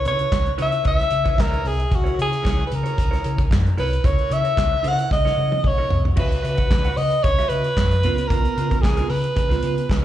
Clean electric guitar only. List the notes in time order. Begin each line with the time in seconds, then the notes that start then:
0.06 E4 B4 C#5
0.18 E4 B4 C#5
0.33 muted clean electric guitar stroke
0.46 muted clean electric guitar stroke
0.58 E4 B4 C#5
0.72 E4 B4 C#5
0.84 E4 B4 C#5
0.98 muted clean electric guitar stroke
1.10 muted clean electric guitar stroke
1.24 E4 B4 C#5
1.37 muted clean electric guitar stroke
1.51 E4 B4 C#5
1.64 muted clean electric guitar stroke
1.78 muted clean electric guitar stroke
1.90 muted clean electric guitar stroke
2.04 E4 A#4 C#5
2.17 E4 A#4 C#5
2.31 muted clean electric guitar stroke
2.43 E4 A#4 C#5
2.57 muted clean electric guitar stroke
2.70 muted clean electric guitar stroke
2.83 E4 A#4 C#5
2.96 muted clean electric guitar stroke
3.11 E4 A#4 C#5
3.24 E4 A#4 C#5
3.39 muted clean electric guitar stroke
3.66 muted clean electric guitar stroke
3.77 E4 A#4 C#5
3.92 muted clean electric guitar stroke
4.04 E4 A#4 C#5
4.30 E4 A#4 C#5
4.44 E4 A#4 C#5
4.57 muted clean electric guitar stroke
4.72 muted clean electric guitar stroke
4.83 E4 A#4 C#5
4.99 E4 A#4
5.11 muted clean electric guitar stroke
5.25 E4 A#4 C#5
5.38 E4 A#4 C#5
5.52 muted clean electric guitar stroke
5.63 muted clean electric guitar stroke
5.78 E4 A#4 C#5
5.90 muted clean electric guitar stroke
6.04 muted clean electric guitar stroke
6.16 F#4 B4 E5
6.30 muted clean electric guitar stroke
6.42 F#4 B4 E5
6.57 F#4 B4 F#5
6.71 muted clean electric guitar stroke
6.85 F#4 B4 F#5
6.98 muted clean electric guitar stroke
7.13 muted clean electric guitar stroke
7.25 muted clean electric guitar stroke
7.39 F#4 B4 E5
7.51 F#4 B4 E5
7.66 muted clean electric guitar stroke
7.78 muted clean electric guitar stroke
7.91 muted clean electric guitar stroke
8.05 B3 F4 A#4
8.18 B3 F4 A#4
8.30 B3 F4 A#4
8.45 muted clean electric guitar stroke
8.56 B3 F4 B4
8.70 B3 F4 A#4
8.83 muted clean electric guitar stroke
8.97 B3 F4 A#4
9.09 muted clean electric guitar stroke
9.22 muted clean electric guitar stroke
9.36 muted clean electric guitar stroke
9.49 B3 F4 B4
9.63 B3 F4 B4
9.77 muted clean electric guitar stroke
9.89 muted clean electric guitar stroke